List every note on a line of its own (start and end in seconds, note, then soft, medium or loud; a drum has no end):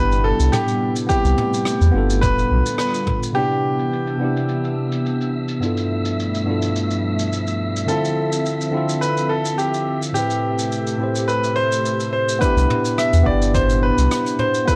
0.00 0.33 G1 medium
0.00 2.20 C3 medium
0.00 2.20 G3 medium
0.00 1.07 B3 loud
0.00 1.08 B3 medium
0.00 1.11 D4 medium
0.00 1.11 E4 medium
0.00 2.20 E4 medium
0.00 1.12 G4 loud
0.00 0.25 B4 loud
0.12 shaker soft
0.24 0.54 A4 medium
0.39 0.49 C2 medium
0.39 shaker medium
0.52 0.93 G4 medium
0.52 cross-stick medium
0.52 mid tom medium
0.52 shaker medium
0.68 shaker soft
0.96 shaker medium
1.07 2.22 A3 medium
1.07 1.90 B3 medium
1.07 1.91 C4 medium
1.07 2.26 G4 loud
1.07 kick loud
1.07 shaker medium
1.11 1.92 E4 medium
1.11 1.93 G4 medium
1.24 1.34 C2 loud
1.24 shaker soft
1.38 mid tom medium
1.54 shaker medium
1.65 cross-stick medium
1.65 shaker medium
1.81 1.91 E2 loud
1.81 shaker soft
1.92 2.22 G1 medium
1.92 3.31 B3 medium
1.92 3.32 D4 medium
1.92 3.33 F4 medium
1.98 3.34 A4 medium
2.10 shaker medium
2.21 2.44 F1 medium
2.21 3.35 D3 medium
2.21 3.35 G3 medium
2.21 3.35 B3 medium
2.21 3.35 F4 medium
2.21 2.77 B4 loud
2.21 kick loud
2.21 mid tom medium
2.21 shaker medium
2.39 shaker soft
2.51 2.62 B1 medium
2.66 shaker medium
2.78 3.19 B4 medium
2.78 cross-stick medium
2.78 shaker medium
2.94 shaker medium
3.07 kick medium
3.07 mid tom medium
3.23 shaker medium
3.33 4.16 C3 medium
3.33 5.60 C3 medium
3.33 5.60 E3 medium
3.33 4.17 B3 medium
3.33 5.60 B3 medium
3.33 4.18 D4 medium
3.33 5.60 D4 medium
3.33 5.30 G4 loud
3.33 12.43 E5 medium
3.33 12.43 E6 medium
3.33 shaker medium
3.38 4.18 E4 medium
3.38 4.19 G4 medium
3.51 shaker soft
3.79 shaker medium
3.93 shaker medium
4.07 shaker soft
4.18 5.58 C3 medium
4.18 5.59 B3 medium
4.18 5.59 D4 medium
4.23 5.60 E4 medium
4.23 5.61 G4 medium
4.36 shaker medium
4.49 shaker medium
4.64 shaker soft
4.92 shaker medium
5.06 shaker medium
5.21 shaker soft
5.48 shaker medium
5.60 6.43 G2 medium
5.60 7.86 B2 medium
5.60 10.11 F3 medium
5.60 7.87 G3 medium
5.60 7.86 A3 medium
5.60 6.43 B3 medium
5.60 6.44 D4 medium
5.60 6.45 E4 medium
5.60 10.11 E5 medium
5.60 shaker medium
5.65 6.45 F4 medium
5.65 6.46 A4 medium
5.77 shaker soft
6.05 shaker medium
6.20 shaker medium
6.35 shaker soft
6.44 7.84 G2 medium
6.44 7.85 B3 medium
6.44 7.85 D4 medium
6.44 7.86 E4 medium
6.49 7.87 F4 medium
6.49 7.87 A4 medium
6.62 shaker medium
6.76 shaker medium
6.91 shaker soft
7.19 shaker medium
7.33 shaker medium
7.47 shaker soft
7.76 shaker medium
7.86 8.69 D3 medium
7.86 10.13 D3 medium
7.86 8.70 C4 medium
7.86 10.13 C4 medium
7.86 8.71 E4 medium
7.86 9.05 A4 medium
7.86 shaker medium
7.91 8.72 F4 medium
7.91 8.72 A4 loud
8.05 shaker soft
8.32 shaker medium
8.46 shaker medium
8.61 shaker soft
8.71 10.11 D3 medium
8.71 10.11 C4 medium
8.71 10.12 E4 medium
8.76 10.13 F4 medium
8.76 10.14 A4 medium
8.89 shaker medium
9.01 9.31 B4 medium
9.01 shaker medium
9.17 shaker soft
9.29 9.56 A4 medium
9.45 shaker medium
9.58 9.99 G4 medium
9.58 shaker medium
9.74 shaker soft
10.02 shaker medium
10.12 10.96 A2 medium
10.12 12.40 C3 medium
10.12 12.40 A3 medium
10.12 10.96 C4 medium
10.12 10.97 E4 medium
10.12 11.24 G4 medium
10.12 12.40 G4 medium
10.12 12.40 A4 medium
10.12 shaker medium
10.17 10.98 G4 medium
10.17 10.99 B4 medium
10.30 shaker soft
10.59 shaker medium
10.72 shaker medium
10.87 shaker soft
10.97 12.37 A2 medium
10.97 12.38 C4 medium
10.97 12.39 E4 medium
11.02 12.39 G4 medium
11.02 12.40 C5 medium
11.15 shaker medium
11.28 11.57 B4 medium
11.28 shaker medium
11.44 shaker soft
11.56 12.09 C5 loud
11.72 shaker medium
11.85 shaker medium
12.00 shaker soft
12.13 12.39 C5 medium
12.29 shaker medium
12.39 14.66 C3 medium
12.39 13.22 B3 loud
12.39 14.76 B3 medium
12.39 13.23 D4 medium
12.39 14.66 D4 loud
12.39 13.00 B4 loud
12.39 kick loud
12.39 closed hi-hat medium
12.39 shaker medium
12.43 13.24 E4 medium
12.43 13.25 G4 loud
12.56 12.66 C2 loud
12.56 closed hi-hat medium
12.56 shaker soft
12.70 mid tom medium
12.85 closed hi-hat medium
12.85 shaker medium
12.98 13.24 E5 medium
12.98 cross-stick medium
12.98 closed hi-hat medium
12.98 shaker medium
13.13 13.23 E2 medium
13.13 closed hi-hat medium
13.13 shaker medium
13.23 13.92 G1 medium
13.23 14.63 B3 medium
13.23 14.64 D4 medium
13.23 13.56 D5 medium
13.23 kick medium
13.27 14.65 E4 medium
13.27 14.66 G4 loud
13.42 shaker medium
13.54 13.84 C5 medium
13.54 kick loud
13.54 closed hi-hat medium
13.54 mid tom medium
13.54 shaker medium
13.69 closed hi-hat medium
13.69 shaker medium
13.83 14.41 B4 medium
13.98 14.08 C2 medium
13.98 closed hi-hat soft
13.98 shaker medium
14.11 cross-stick loud
14.11 closed hi-hat medium
14.11 shaker medium
14.26 closed hi-hat medium
14.26 shaker soft
14.39 14.66 C5 medium
14.39 mid tom medium
14.54 shaker medium
14.65 14.76 A3 medium
14.65 14.76 B3 medium
14.65 14.76 E4 medium
14.65 14.76 B4 loud
14.65 kick loud
14.65 closed hi-hat medium
14.65 shaker medium
14.69 14.76 F4 medium
14.69 14.76 A4 medium